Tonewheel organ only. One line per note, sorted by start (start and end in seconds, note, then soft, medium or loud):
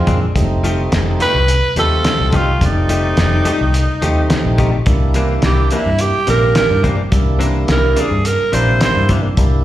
0.00 0.20 F3 medium
0.00 0.20 G#3 medium
0.00 0.20 C4 medium
0.00 0.20 F4 medium
0.35 1.27 G3 medium
0.35 1.27 A3 medium
0.35 1.27 C4 medium
0.35 1.27 D#4 medium
1.77 2.45 G3 medium
1.77 2.46 A3 medium
1.77 2.46 C4 medium
1.77 2.46 F4 medium
2.61 3.52 G3 medium
2.61 3.53 A3 medium
2.61 3.53 C4 medium
2.61 3.53 D5 medium
4.02 4.71 G3 medium
4.02 4.71 A3 medium
4.02 4.71 C4 medium
4.02 4.71 D#4 medium
4.87 5.78 G3 medium
4.87 5.78 A#3 medium
4.87 5.78 D4 medium
4.87 5.78 E4 medium
6.27 6.96 G3 medium
6.27 6.96 A#3 medium
6.27 6.96 D4 medium
6.27 6.96 G4 medium
7.11 8.03 G3 medium
7.11 8.03 A#3 medium
7.11 8.03 D4 medium
7.11 8.03 E4 medium
8.53 9.22 G3 medium
8.53 9.21 A#3 medium
8.53 9.22 D4 medium
8.53 9.22 E4 medium
9.38 9.64 G3 medium
9.38 9.64 A#3 medium
9.38 9.64 D4 medium
9.38 9.64 E4 medium